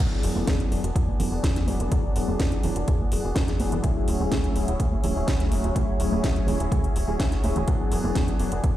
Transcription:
0.00 F#3 B3 D4 E4 F#4 G#4 D5 G#5
0.23 E1 F#3 B3 D4 G#4, open hi-hat
0.35 E1 F#3 B3 D4 E4 G#4, high conga, maracas
0.47 E2 F#3 D4 G#4, kick, snare, closed hi-hat, maracas
0.60 closed hi-hat, maracas
0.71 E1 F#3 B3 D4 E4 G#4, open hi-hat
0.83 E1 B3 D4 G#4, closed hi-hat, maracas
0.95 E2 F#3 B3 D4 E4 G#4, kick, closed hi-hat
1.07 B3 D4 G#4, high conga, maracas
1.19 E1 F#3 B3 D4 E4 G#4, open hi-hat, low conga
1.31 E1 B3 D4 G#4, maracas
1.43 E2 F#3 B3 D4 G#4, kick, snare, closed hi-hat
1.55 F#3 B3 D4 E4 G#4, snare, closed hi-hat
1.67 E1 F#3 B3 D4 G#4, open hi-hat, high conga
1.79 E1 B3 D4 G#4, closed hi-hat, maracas
1.91 E2 F#3 B3 D4 E4 G#4, kick, closed hi-hat
2.15 E1 F#3 B3 D4 G#4, open hi-hat
2.27 E1 F#3 B3 D4 E4 G#4, high conga, maracas
2.39 E2 F#3 B3 D4 G#4, kick, snare, closed hi-hat, maracas
2.52 closed hi-hat, maracas
2.63 E1 F#3 B3 D4 E4 G#4, open hi-hat, low conga
2.75 E1 B3 D4 G#4, closed hi-hat, maracas
2.87 E2 F#3 B3 D4 E4 G#4, kick, closed hi-hat
2.99 B3 D4 G#4, high conga, maracas
3.11 E1 F#3 B3 D4 E4 G#4, open hi-hat
3.23 E1 B3 D4 G#4, maracas
3.35 E2 F#3 D4, kick, snare, closed hi-hat
3.47 F#3 B3 D4 E4 G#4, snare, closed hi-hat, maracas
3.59 E1 F#3 B3 D4 G#4, open hi-hat, high conga
3.71 E1 B3 D4 G#4, closed hi-hat, low conga, maracas
3.83 D2 F#3 A3 C#4 E4 G#4 C#5 E5, kick, closed hi-hat, maracas
3.96 maracas
4.06 D1 F#3 C#4 E4 G#4, open hi-hat
4.19 D1 F#3 A3 C#4 E4 G#4, high conga, maracas
4.31 D2 F#3 C#4 E4 G#4, kick, snare, closed hi-hat, maracas
4.44 closed hi-hat, maracas
4.54 D1 F#3 A3 C#4 E4 G#4, open hi-hat
4.67 D1 C#4 E4 G#4, closed hi-hat
4.79 D2 F#3 A3 C#4 E4 G#4, kick, closed hi-hat
4.91 C#4 E4 G#4, high conga, maracas
5.03 D1 F#3 A3 C#4 E4 G#4, open hi-hat, low conga
5.15 D1 C#4 E4 G#4
5.27 D2 F#3 C#4 E4 G#4, kick, snare, closed hi-hat
5.39 F#3 A3 C#4 E4 G#4, snare, closed hi-hat
5.50 D1 F#3 C#4 E4 G#4, open hi-hat, high conga
5.64 D1, closed hi-hat, maracas
5.75 D2 F#3 A3 C#4 E4 G#4, kick, closed hi-hat, maracas
5.88 maracas
5.98 D1 F#3 C#4 E4 G#4, open hi-hat
6.11 D1 F#3 A3 C#4 E4 G#4, high conga, maracas
6.23 D2 F#3 C#4 E4 G#4, kick, snare, closed hi-hat
6.36 closed hi-hat, maracas
6.47 D1 F#3 A3 C#4 E4 G#4, open hi-hat, low conga
6.59 D1 C#4 E4 G#4, closed hi-hat, maracas
6.71 D2 F#3 A3 C#4 E4 G#4, kick, closed hi-hat
6.83 C#4 E4 G#4, closed hi-hat, high conga, maracas
6.96 D1, open hi-hat
7.07 D1 F#3 A3 C#4 E4 G#4, maracas
7.19 D2 F#3 C#4 E4 G#4, kick, snare, closed hi-hat
7.31 C#4 E4 G#4, snare, closed hi-hat, maracas
7.43 D1 F#3 A3 C#4 E4 G#4, open hi-hat, high conga
7.55 D1 C#4 E4 G#4, closed hi-hat, low conga, maracas
7.67 E2 F#3 B3 D4 E4 G#4 D5, kick, closed hi-hat
7.81 maracas
7.91 E1 F#3 B3 D4 G#4, open hi-hat
8.03 E1 F#3 B3 D4 E4 G#4, high conga, maracas
8.15 E2 F#3 B3 D4, kick, snare, closed hi-hat, maracas
8.28 closed hi-hat, maracas
8.39 E1 F#3 B3 D4 E4 G#4, open hi-hat
8.51 E1 B3 D4 G#4, closed hi-hat
8.63 E2 F#3 B3 D4 E4 G#4, kick, closed hi-hat

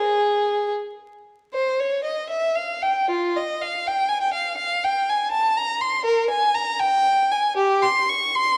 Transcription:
Already playing: G#4
1.54 C5
1.80 C#5
2.04 D#5
2.29 E5
2.56 F5
2.82 G5
3.10 F4
3.36 D#5
3.62 F5
3.87 G5
4.08 G#5
4.21 G5
4.33 F5
4.57 F5
4.84 G5
5.10 G#5
5.31 A5
5.57 A#5
5.81 C6
6.05 A#4
6.30 G#5
6.54 A#5
6.79 G5
7.31 G#5
7.56 G4
7.82 C6
8.09 C#6
8.35 C6

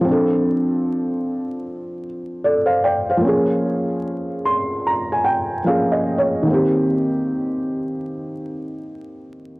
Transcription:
0.01 F3 C4
0.08 D4 A4
2.44 A4 D5
2.66 C5 F5
2.84 D5 G5
3.10 C5 F5
3.17 F3 A#3
3.25 C#4 G#4
4.45 C6
4.87 A#5
5.12 G#5
5.24 G5
5.64 F3 A#3 C#4 F5
5.69 G#4
5.92 D#5
6.18 C#5
6.43 D#3 A#3
6.50 C4 G4

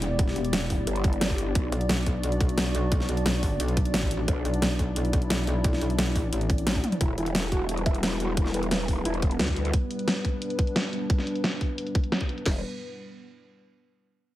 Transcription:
Already playing: E1 B3 E4 G4 D5
0.02 closed hi-hat
0.19 kick, closed hi-hat
0.28 snare
0.36 E1, closed hi-hat
0.45 closed hi-hat
0.53 snare, closed hi-hat
0.70 kick, open hi-hat
0.87 G1, closed hi-hat
0.96 closed hi-hat
1.04 kick, closed hi-hat
1.13 closed hi-hat
1.21 snare, closed hi-hat
1.30 kick
1.38 closed hi-hat
1.55 B1 D4 F#4, kick, closed hi-hat
1.72 B1, closed hi-hat
1.81 closed hi-hat
1.89 snare, closed hi-hat
2.06 kick, closed hi-hat
2.23 closed hi-hat
2.32 closed hi-hat
2.41 kick, closed hi-hat
2.49 closed hi-hat
2.58 snare, closed hi-hat
2.75 closed hi-hat
2.92 kick, closed hi-hat
3.00 snare
3.09 B1, closed hi-hat
3.17 closed hi-hat
3.26 snare, closed hi-hat
3.43 kick, open hi-hat
3.60 B1, closed hi-hat
3.68 closed hi-hat
3.77 kick, closed hi-hat
3.85 closed hi-hat
3.94 A1, snare, closed hi-hat
4.02 kick
4.11 closed hi-hat
4.28 B1 E4, kick, closed hi-hat
4.45 B1, closed hi-hat
4.54 closed hi-hat
4.62 snare, closed hi-hat
4.79 kick, closed hi-hat
4.96 closed hi-hat
5.05 closed hi-hat
5.13 kick, closed hi-hat
5.22 closed hi-hat
5.30 snare, closed hi-hat
5.47 closed hi-hat
5.64 kick, closed hi-hat
5.73 snare
5.81 B1, closed hi-hat
5.90 closed hi-hat
5.99 snare, closed hi-hat
6.16 kick, open hi-hat
6.33 A1, closed hi-hat
6.41 closed hi-hat
6.50 kick, closed hi-hat
6.58 closed hi-hat
6.67 snare, closed hi-hat, high tom
6.75 kick, high tom
6.84 closed hi-hat, mid tom
6.92 closed hi-hat, mid tom
7.01 E1 G3 B3 E4 B4, kick, closed hi-hat
7.18 E1 E4, closed hi-hat
7.26 closed hi-hat
7.35 snare, closed hi-hat
7.52 F#4, kick, closed hi-hat
7.69 closed hi-hat
7.77 closed hi-hat
7.86 E5, kick, closed hi-hat
7.95 closed hi-hat
8.03 snare, closed hi-hat
8.20 F#4, closed hi-hat
8.37 kick, closed hi-hat
8.46 snare
8.54 E1 B4, closed hi-hat
8.63 closed hi-hat
8.71 B4, snare, closed hi-hat
8.88 kick, open hi-hat
9.05 E1 E4, closed hi-hat
9.14 closed hi-hat
9.22 kick, closed hi-hat
9.31 closed hi-hat
9.39 D2 B4, snare, closed hi-hat
9.48 kick
9.56 closed hi-hat
9.65 closed hi-hat
9.73 D4, kick, closed hi-hat
9.91 closed hi-hat
9.99 closed hi-hat
10.08 snare, closed hi-hat
10.25 kick, closed hi-hat
10.42 closed hi-hat
10.50 closed hi-hat
10.59 kick, closed hi-hat
10.67 closed hi-hat
10.76 snare, closed hi-hat
10.93 closed hi-hat
11.10 kick, closed hi-hat
11.18 snare
11.27 closed hi-hat
11.35 closed hi-hat
11.44 snare, closed hi-hat
11.61 kick, open hi-hat
11.78 closed hi-hat
11.87 closed hi-hat
11.95 kick, closed hi-hat
12.04 closed hi-hat
12.12 snare, closed hi-hat
12.21 kick
12.29 closed hi-hat
12.38 closed hi-hat
12.46 E1, kick, snare, crash

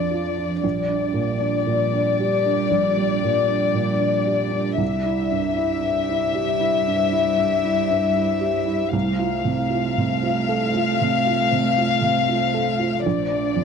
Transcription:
Already playing: F2 F3 D4 F4 D5
0.11 F4
0.37 D4
0.63 A#1 G3 D4 D5
0.89 D4
1.13 A#2
1.40 D4
1.66 A#2
1.93 D4
2.20 G4
2.45 D4
2.71 A#1
2.97 G3
3.24 A#2
3.49 D4
3.74 A#2
3.99 D4
4.26 G4
4.51 D4
4.78 C2 G3 E4 C5 E5
4.82 G3
5.05 E4
5.31 G2
5.56 E4
5.81 G2
6.09 E4
6.35 G4
6.60 E4
6.88 G2
7.12 E4
7.38 G2
7.64 E4
7.90 G2
8.16 E4
8.41 G4
8.66 E4
8.93 C2 A3 F4 C5 F5
9.19 F4
9.45 C3
9.70 F4
9.98 C3
10.23 F4
10.49 A4
10.74 F4
11.01 C3
11.27 F4
11.52 C3
11.78 F4
12.02 C3
12.29 F4
12.54 A4
12.80 F4
13.05 A#1 F3 A#3 F4 D5
13.30 D4
13.56 F2

